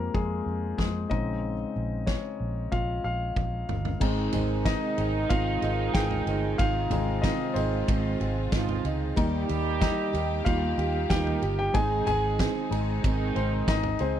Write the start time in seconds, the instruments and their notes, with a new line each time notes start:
Already playing: grand piano G#3 A#3 C4 F4 G4 A#4 C5
0.14 fingered electric bass F2, grand piano F3 G#3 F4 G#4, kick
0.46 fingered electric bass F2
0.78 fingered electric bass F2, grand piano G#3 G#4, kick, snare
1.09 fingered electric bass A#1, grand piano C#3 G#3 C4 D#4 D#5, kick
1.76 fingered electric bass A#1
2.06 grand piano C#4 C#5, kick, snare
2.40 fingered electric bass A#1
2.72 fingered electric bass A#1, grand piano F4 F5, kick, high tom
3.04 fingered electric bass A#1, grand piano F4 F5
3.36 fingered electric bass A#1, kick, mid tom
3.69 fingered electric bass G1, floor tom
3.85 floor tom
4.00 fingered electric bass G#1, steel-string acoustic guitar G#2 D#3 G#3 C4 D#4 G#4, string section C3 D#3 G#3 D#4, french horn section D#3 D#4, grand piano G#3 C4 D#4, kick, crash
4.33 fingered electric bass G#1, steel-string acoustic guitar G#3 C4 D#4 G#4, floor tom, ride
4.65 steel-string acoustic guitar G#3 C4 D#4 G#4, grand piano D#4 D#5, kick, snare, ride
4.97 fingered electric bass G#1, steel-string acoustic guitar G#3 C4 D#4 G#4, ride
5.30 fingered electric bass G#1, steel-string acoustic guitar G#2 D#3 G#3 C4 D#4 G#4, grand piano F4 F5, kick, ride
5.62 fingered electric bass G#1, steel-string acoustic guitar G#3 C4 D#4 G#4, ride
5.94 fingered electric bass G#1, steel-string acoustic guitar G#3 C4 D#4 G#4, grand piano G#4 G5, kick, snare, ride
6.11 floor tom
6.26 fingered electric bass G1, steel-string acoustic guitar G#3 C4 D#4 G#4, ride
6.58 fingered electric bass G#1, steel-string acoustic guitar G#2 D#3 G#3 C4 D#4 G#4, string section F4, grand piano F4 F5, kick, ride
6.90 fingered electric bass G#1, grand piano G#3 C4 D#4, steel-string acoustic guitar G#3 C4 D#4 G#4, floor tom, ride
7.22 steel-string acoustic guitar G#3 C4 D#4, grand piano D#4 D#5, kick, snare, ride
7.26 steel-string acoustic guitar G#4
7.54 fingered electric bass G#1, grand piano C4 C5, steel-string acoustic guitar D#4 G#4, ride
7.58 steel-string acoustic guitar G#3 C4
7.88 fingered electric bass G#1, steel-string acoustic guitar G#2 D#3 G#3 C4 D#4 G#4, kick, ride
8.20 fingered electric bass G#1, steel-string acoustic guitar G#3 C4 D#4 G#4, ride
8.52 fingered electric bass G#1, french horn section F3 F4, steel-string acoustic guitar G#3 C4 D#4 G#4, kick, snare, ride
8.69 floor tom
8.84 fingered electric bass C#2, steel-string acoustic guitar G#3 C4 D#4 G#4, ride
9.16 fingered electric bass D#2, steel-string acoustic guitar D#3 G3 A#3 D#4 G4, grand piano G3 A#3 D#4, french horn section G3 G4, string section G3 A#3 G4, kick, ride
9.49 fingered electric bass D#2, steel-string acoustic guitar A#3 D#4 G4, ride
9.81 steel-string acoustic guitar G3 A#3 D#4 G4, grand piano D#4 D#5, kick, snare, ride
10.13 fingered electric bass D#2, steel-string acoustic guitar A#3 D#4 G4, ride
10.45 fingered electric bass D#2, steel-string acoustic guitar D#3 G3 A#3 D#4 G4, grand piano F4 F5, kick, ride
10.78 fingered electric bass D#2, steel-string acoustic guitar A#3 D#4 G4, ride
11.10 fingered electric bass D#2, french horn section D#3 D#4, steel-string acoustic guitar G3 A#3 D#4 G4, grand piano G4 G5, kick, snare, ride
11.27 floor tom
11.42 fingered electric bass G1, steel-string acoustic guitar A#3 D#4 G4, ride
11.59 grand piano G4 G5
11.73 fingered electric bass G#1, steel-string acoustic guitar G#2 D#3 G#3 C4 D#4 G#4, string section C3 G#3 D#4, grand piano G#3 C4 D#4 G#4 G#5, french horn section G#3 G#4, kick, ride
12.06 fingered electric bass G#1, steel-string acoustic guitar G#3 C4 D#4 G#4, grand piano G#4 G#5, floor tom, ride
12.39 steel-string acoustic guitar G#3 C4 D#4 G#4, kick, snare, ride
12.70 fingered electric bass G#1, grand piano G#3 C4 D#4, steel-string acoustic guitar C4 D#4 G#4, ride
12.74 steel-string acoustic guitar G#3
13.02 fingered electric bass G#1, steel-string acoustic guitar G#2 D#3 G#3 C4 D#4 G#4, french horn section D#3 D#4, kick, ride
13.35 fingered electric bass G#1, steel-string acoustic guitar G#3 C4 D#4 G#4, grand piano C4 C5, ride
13.68 fingered electric bass G#1, steel-string acoustic guitar G#3 C4 D#4 G#4, grand piano D#4 D#5, kick, snare, ride
13.83 floor tom
13.99 fingered electric bass C#2, steel-string acoustic guitar G#3 C4 D#4 G#4, grand piano C4 C5, ride